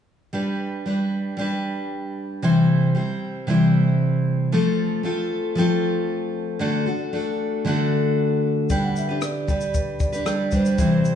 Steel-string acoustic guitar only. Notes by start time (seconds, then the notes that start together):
0.33 G3 D4 G4 B4
0.86 G3 D4 G4 B4
1.37 G3 D4 G4
1.41 B4
2.42 C3 E3 G3 C4 E4 C5
2.95 G3 C4 E4 C5
3.47 C3 E3 G3 C4 E4 C5
4.52 F3 A3 C4 F4 A4
5.03 A3 C4 F4 A4
5.55 F3 A3 C4 F4
5.60 A4
6.59 D3 A3 D4 F#4 A4
6.86 D4 F#4 A4
7.13 A3 D4 F#4 A4
7.65 D3 A3 D4 F#4
7.69 A4
8.70 G3 D4 G4 B4
9.09 D4 G4 B4
9.47 G3 D4 G4 B4
10.12 D4 G4 B4
10.25 G3 D4 G4 B4
10.52 G3 D4 G4 B4
10.78 C3 E3 G3 C4 E4 C5